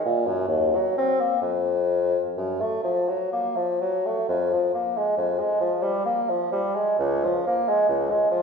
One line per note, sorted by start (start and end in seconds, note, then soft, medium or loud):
0.06 0.28 A#2 medium
0.27 0.48 F#2 medium
0.48 0.77 D#2 medium
0.75 0.97 F#3 medium
0.98 1.21 C4 medium
1.20 1.41 A#3 medium
1.42 2.20 F2 medium
2.37 2.63 F#2 soft
2.61 2.83 A3 soft
2.84 3.10 F3 soft
3.09 3.32 F#3 soft
3.33 3.58 A#3 soft
3.57 3.80 F3 soft
3.81 4.08 F#3 soft
4.07 4.28 A3 soft
4.29 4.54 F2 medium
4.53 4.73 F3 soft
4.74 4.99 A#3 soft
4.98 5.17 G#3 soft
5.17 5.41 F2 soft
5.39 5.60 G#3 soft
5.60 5.84 F3 medium
5.83 6.05 G3 medium
6.06 6.31 A#3 medium
6.30 6.52 F3 medium
6.52 6.76 G3 medium
6.75 6.98 G#3 soft
6.99 7.26 C#2 medium
7.24 7.46 F3 soft
7.47 7.70 A#3 medium
7.69 7.89 G#3 medium
7.89 8.12 C#2 medium
8.11 8.31 G#3 medium
8.31 8.42 F3 medium